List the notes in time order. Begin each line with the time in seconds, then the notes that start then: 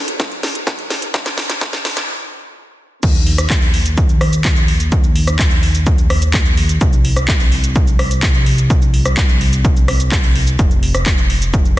0.08 closed hi-hat
0.20 kick, snare, closed hi-hat
0.32 closed hi-hat
0.43 snare, open hi-hat
0.55 closed hi-hat
0.67 kick, snare, closed hi-hat
0.79 closed hi-hat
0.90 snare, open hi-hat
1.02 closed hi-hat
1.14 kick, snare, closed hi-hat
1.26 snare, closed hi-hat
1.38 snare, open hi-hat
1.50 snare, closed hi-hat
1.61 kick, snare, closed hi-hat
1.73 snare, closed hi-hat
1.85 snare, open hi-hat
1.97 snare, closed hi-hat
3.03 D#2, kick, closed hi-hat, crash, cabasa
3.15 closed hi-hat, cabasa
3.27 open hi-hat
3.38 cross-stick, closed hi-hat, cabasa
3.50 kick, clap, closed hi-hat, cabasa
3.62 closed hi-hat, cabasa
3.74 open hi-hat
3.86 closed hi-hat, cabasa
3.97 kick, closed hi-hat, cabasa
4.09 closed hi-hat, cabasa
4.21 cross-stick, open hi-hat
4.33 closed hi-hat, cabasa
4.45 kick, clap, closed hi-hat, cabasa
4.56 closed hi-hat, cabasa
4.68 open hi-hat
4.80 closed hi-hat, cabasa
4.92 kick, closed hi-hat, cabasa
5.04 closed hi-hat, cabasa
5.16 open hi-hat
5.27 cross-stick, closed hi-hat, cabasa
5.39 kick, clap, closed hi-hat, cabasa
5.51 closed hi-hat, cabasa
5.63 open hi-hat
5.75 closed hi-hat, cabasa
5.86 kick, closed hi-hat, cabasa
5.98 closed hi-hat, cabasa
6.10 cross-stick, open hi-hat
6.22 closed hi-hat, cabasa
6.34 kick, clap, closed hi-hat, cabasa
6.46 closed hi-hat, cabasa
6.57 open hi-hat
6.69 closed hi-hat, cabasa
6.81 C2, kick, closed hi-hat, cabasa
6.93 closed hi-hat, cabasa
7.05 open hi-hat
7.17 cross-stick, closed hi-hat, cabasa
7.28 kick, clap, closed hi-hat, cabasa
7.40 closed hi-hat, cabasa
7.52 open hi-hat
7.64 closed hi-hat, cabasa
7.76 kick, closed hi-hat, cabasa
7.87 closed hi-hat, cabasa
7.99 cross-stick, open hi-hat
8.11 closed hi-hat, cabasa
8.23 kick, clap, closed hi-hat, cabasa
8.35 closed hi-hat, cabasa
8.46 open hi-hat
8.58 closed hi-hat, cabasa
8.70 kick, closed hi-hat, cabasa
8.82 closed hi-hat, cabasa
8.94 open hi-hat
9.06 cross-stick, closed hi-hat, cabasa
9.17 kick, clap, closed hi-hat, cabasa
9.29 closed hi-hat, cabasa
9.41 open hi-hat
9.53 closed hi-hat, cabasa
9.65 kick, closed hi-hat, cabasa
9.77 closed hi-hat, cabasa
9.88 cross-stick, open hi-hat
10.00 closed hi-hat, cabasa
10.12 kick, clap, closed hi-hat, cabasa
10.24 closed hi-hat, cabasa
10.35 open hi-hat
10.47 closed hi-hat, cabasa
10.59 F1, kick, closed hi-hat, cabasa
10.71 closed hi-hat, cabasa
10.83 open hi-hat
10.95 cross-stick, closed hi-hat, cabasa
11.06 kick, clap, closed hi-hat, cabasa
11.18 closed hi-hat, cabasa
11.30 open hi-hat
11.42 closed hi-hat, cabasa
11.54 kick, closed hi-hat, cabasa
11.65 closed hi-hat, cabasa